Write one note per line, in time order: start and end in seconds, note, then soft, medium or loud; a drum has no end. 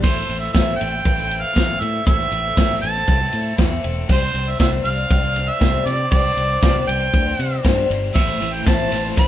0.02 0.22 A1 loud
0.02 0.15 A2 medium
0.02 0.16 E3 medium
0.02 0.16 A3 medium
0.02 0.16 C4 medium
0.02 0.15 E4 medium
0.02 0.14 A4 medium
0.02 0.39 C5 loud
0.02 kick loud
0.02 crash loud
0.15 0.26 A3 soft
0.15 0.28 C4 soft
0.15 0.29 E4 soft
0.15 0.28 A4 medium
0.27 0.48 A1 medium
0.27 0.41 A3 medium
0.27 0.42 C4 medium
0.27 0.41 E4 medium
0.27 0.40 A4 medium
0.27 ride medium
0.39 0.54 C4 soft
0.39 0.54 E4 soft
0.39 0.54 A4 soft
0.39 0.52 E5 medium
0.45 0.53 A3 soft
0.53 0.73 A1 medium
0.53 0.79 A2 medium
0.53 0.79 E3 medium
0.53 0.78 A3 medium
0.53 0.79 C4 loud
0.53 0.80 E4 medium
0.53 0.80 A4 medium
0.53 0.76 E5 loud
0.53 kick loud
0.53 snare loud
0.53 ride loud
0.76 0.92 A3 medium
0.76 1.43 G5 loud
0.81 1.00 A1 medium
0.81 0.92 C4 medium
0.81 0.91 E4 medium
0.81 0.90 A4 medium
0.81 ride medium
0.91 1.18 A3 soft
0.91 1.17 C4 soft
0.91 1.16 E4 medium
0.91 1.15 A4 medium
1.05 1.43 A1 loud
1.05 kick loud
1.05 ride loud
1.16 1.28 A3 soft
1.16 1.29 C4 soft
1.16 1.30 E4 medium
1.16 1.30 A4 medium
1.29 1.54 A3 medium
1.29 1.54 C4 medium
1.29 1.54 E4 medium
1.29 1.54 A4 medium
1.29 ride medium
1.42 1.82 F5 loud
1.53 1.75 A1 loud
1.53 1.80 A2 medium
1.53 1.80 E3 medium
1.53 1.78 A3 medium
1.53 1.79 C4 medium
1.53 1.80 E4 medium
1.53 1.81 A4 medium
1.53 kick loud
1.53 ride medium
1.58 snare loud
1.79 2.00 A2 loud
1.79 2.05 A3 medium
1.79 2.06 C4 medium
1.79 2.06 E4 medium
1.79 2.07 A4 medium
1.79 2.06 E5 loud
1.79 ride medium
2.05 2.26 A1 loud
2.05 2.19 A2 medium
2.05 2.19 E3 medium
2.05 2.19 A3 medium
2.05 2.18 C4 medium
2.05 2.17 E4 medium
2.05 2.16 A4 medium
2.05 2.79 E5 loud
2.05 kick loud
2.05 ride loud
2.17 2.30 A3 soft
2.17 2.31 C4 soft
2.17 2.32 E4 soft
2.17 2.31 A4 soft
2.31 2.50 A1 medium
2.31 2.44 A3 medium
2.31 2.45 C4 medium
2.31 2.45 E4 medium
2.31 2.43 A4 medium
2.31 ride medium
2.44 2.56 A3 soft
2.44 2.56 C4 soft
2.44 2.56 E4 medium
2.44 2.57 A4 medium
2.56 2.76 A1 medium
2.56 2.82 A2 medium
2.56 2.82 E3 medium
2.56 2.80 A3 medium
2.56 2.82 C4 medium
2.56 2.82 E4 loud
2.56 2.83 A4 loud
2.56 kick loud
2.56 snare loud
2.56 ride loud
2.81 3.02 A1 medium
2.81 2.95 A3 medium
2.81 2.96 C4 medium
2.81 2.95 E4 medium
2.81 2.93 A4 medium
2.81 3.54 A5 loud
2.81 ride medium
2.95 3.20 A3 soft
2.95 3.19 C4 medium
2.95 3.19 E4 medium
2.95 3.17 A4 medium
3.07 3.27 C2 loud
3.07 kick loud
3.07 ride loud
3.19 3.31 A3 soft
3.19 3.32 C4 soft
3.19 3.33 E4 medium
3.19 3.32 A4 medium
3.32 3.52 A2 medium
3.32 3.56 A3 medium
3.32 3.57 C4 medium
3.32 3.58 E4 medium
3.32 3.58 A4 medium
3.32 ride medium
3.57 3.77 E2 loud
3.57 3.83 A2 medium
3.57 3.84 E3 medium
3.57 3.80 A3 medium
3.57 3.81 C4 loud
3.57 3.82 E4 loud
3.57 3.83 A4 loud
3.57 kick loud
3.57 snare loud
3.57 ride loud
3.81 4.03 E1 loud
3.81 4.08 A3 medium
3.81 4.07 C4 medium
3.81 4.09 E4 medium
3.81 4.09 A4 medium
3.81 ride medium
4.07 4.28 C2 loud
4.07 4.21 C3 medium
4.07 4.22 G3 medium
4.07 4.22 C4 medium
4.07 4.20 D4 medium
4.07 4.18 C5 loud
4.07 kick loud
4.07 crash loud
4.12 4.51 C5 loud
4.19 4.32 C4 soft
4.19 4.34 D4 medium
4.19 4.33 C5 medium
4.33 4.53 C2 loud
4.33 4.47 G3 medium
4.33 4.47 C4 medium
4.33 4.46 D4 medium
4.33 4.44 C5 medium
4.33 ride medium
4.45 4.58 C4 soft
4.45 4.58 D4 soft
4.45 4.59 C5 soft
4.50 4.59 E5 medium
4.57 4.79 C2 loud
4.57 4.84 C3 medium
4.57 4.82 G3 medium
4.57 4.83 C4 medium
4.57 4.84 D4 loud
4.57 4.85 C5 loud
4.57 4.72 E5 medium
4.57 kick loud
4.57 snare loud
4.57 ride loud
4.83 5.04 C2 medium
4.83 4.97 G3 medium
4.83 4.98 C4 medium
4.83 4.96 D4 medium
4.83 4.94 C5 medium
4.83 5.51 F5 loud
4.83 ride medium
4.96 5.23 C4 soft
4.96 5.22 D4 medium
4.96 5.20 C5 medium
5.10 5.48 C2 loud
5.10 kick loud
5.10 ride loud
5.21 5.35 C4 soft
5.21 5.35 D4 medium
5.21 5.35 C5 medium
5.34 5.58 G3 medium
5.34 5.59 C4 medium
5.34 5.59 D4 medium
5.34 5.60 C5 medium
5.34 ride medium
5.49 5.88 E5 loud
5.58 5.80 C2 medium
5.58 5.86 C3 medium
5.58 5.84 G3 medium
5.58 5.85 C4 medium
5.58 5.86 D4 medium
5.58 5.87 C5 loud
5.58 kick loud
5.58 snare loud
5.58 ride medium
5.85 6.05 C3 medium
5.85 6.10 G3 medium
5.85 6.10 C4 medium
5.85 6.11 D4 medium
5.85 6.11 C5 medium
5.85 6.10 D5 loud
5.85 snare soft
5.85 ride medium
6.11 6.31 C2 loud
6.11 6.24 C3 medium
6.11 6.25 G3 medium
6.11 6.25 C4 medium
6.11 6.24 D4 medium
6.11 6.23 C5 medium
6.11 6.84 D5 loud
6.11 kick loud
6.11 ride loud
6.24 6.36 C4 soft
6.24 6.36 D4 medium
6.24 6.37 C5 medium
6.36 6.56 C2 medium
6.36 6.50 G3 medium
6.36 6.50 C4 medium
6.36 6.50 D4 medium
6.36 6.48 C5 medium
6.36 ride medium
6.49 6.61 C4 soft
6.49 6.61 D4 medium
6.49 6.61 C5 medium
6.60 6.82 C2 medium
6.60 6.87 C3 medium
6.60 6.85 G3 medium
6.60 6.86 C4 medium
6.60 6.87 D4 medium
6.60 6.88 C5 medium
6.60 kick loud
6.60 snare loud
6.60 ride loud
6.86 7.07 C2 medium
6.86 7.00 G3 medium
6.86 7.01 C4 medium
6.86 7.00 D4 medium
6.86 6.99 C5 medium
6.86 7.60 G5 loud
6.86 ride medium
7.00 7.28 C4 soft
7.00 7.27 D4 soft
7.00 7.25 C5 medium
7.13 7.33 D2 loud
7.13 kick loud
7.13 ride loud
7.26 7.38 C4 soft
7.26 7.40 D4 soft
7.26 7.39 C5 medium
7.38 7.58 C3 loud
7.38 7.62 G3 medium
7.38 7.63 C4 medium
7.38 7.63 D4 medium
7.38 7.63 C5 medium
7.38 ride medium
7.63 7.84 G2 medium
7.63 7.89 C3 medium
7.63 7.87 G3 loud
7.63 7.89 C4 medium
7.63 7.89 D4 medium
7.63 7.90 C5 loud
7.63 kick loud
7.63 snare loud
7.63 ride loud
7.88 8.09 G1 loud
7.88 8.15 G3 medium
7.88 8.14 C4 medium
7.88 8.16 D4 medium
7.88 8.15 C5 medium
7.88 ride medium
8.14 8.34 A1 medium
8.14 8.28 A2 medium
8.14 8.28 E3 medium
8.14 8.28 A3 medium
8.14 8.26 C4 medium
8.14 8.25 E4 medium
8.14 8.24 C5 loud
8.14 8.55 E5 loud
8.14 kick loud
8.14 crash loud
8.25 8.36 A3 soft
8.25 8.38 C4 medium
8.25 8.39 E4 medium
8.25 8.39 C5 medium
8.38 8.65 E3 medium
8.38 8.52 A3 medium
8.38 8.52 C4 medium
8.38 8.50 E4 medium
8.38 8.49 C5 medium
8.42 8.60 A1 medium
8.42 ride medium
8.50 8.64 A3 soft
8.50 8.64 C4 soft
8.50 8.64 E4 soft
8.50 8.64 C5 soft
8.50 8.66 G5 medium
8.64 8.86 A1 medium
8.64 8.91 A2 medium
8.64 8.91 E3 medium
8.64 8.89 A3 medium
8.64 8.91 C4 medium
8.64 8.92 E4 medium
8.64 8.92 C5 medium
8.64 9.14 A5 loud
8.64 kick loud
8.64 snare loud
8.64 ride loud
8.90 9.11 A1 medium
8.90 9.04 A3 medium
8.90 9.04 C4 medium
8.90 9.03 E4 medium
8.90 9.01 C5 medium
8.90 ride medium
9.03 9.28 A3 medium
9.03 9.28 C4 medium
9.03 9.28 E4 medium
9.03 9.27 C5 medium
9.17 9.28 A1 medium
9.17 9.28 E4 medium
9.17 9.28 B5 loud
9.17 kick loud
9.17 ride loud